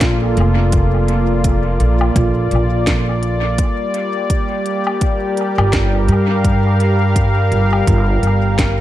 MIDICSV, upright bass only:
0, 0, Header, 1, 2, 480
1, 0, Start_track
1, 0, Key_signature, -2, "minor"
1, 0, Tempo, 714286
1, 491, Time_signature, 4, 2, 24, 8
1, 5918, End_track
2, 0, Start_track
2, 0, Title_t, "Upright bass"
2, 0, Program_c, 0, 32
2, 0, Note_on_c, 0, 34, 98
2, 232, Note_off_c, 0, 34, 0
2, 251, Note_on_c, 0, 29, 91
2, 1193, Note_off_c, 0, 29, 0
2, 1211, Note_on_c, 0, 34, 82
2, 1428, Note_off_c, 0, 34, 0
2, 1449, Note_on_c, 0, 34, 95
2, 1687, Note_off_c, 0, 34, 0
2, 1691, Note_on_c, 0, 34, 81
2, 2393, Note_off_c, 0, 34, 0
2, 3751, Note_on_c, 0, 31, 101
2, 4071, Note_off_c, 0, 31, 0
2, 4090, Note_on_c, 0, 43, 93
2, 5032, Note_off_c, 0, 43, 0
2, 5051, Note_on_c, 0, 31, 89
2, 5268, Note_off_c, 0, 31, 0
2, 5291, Note_on_c, 0, 31, 97
2, 5526, Note_off_c, 0, 31, 0
2, 5530, Note_on_c, 0, 31, 83
2, 5918, Note_off_c, 0, 31, 0
2, 5918, End_track
0, 0, End_of_file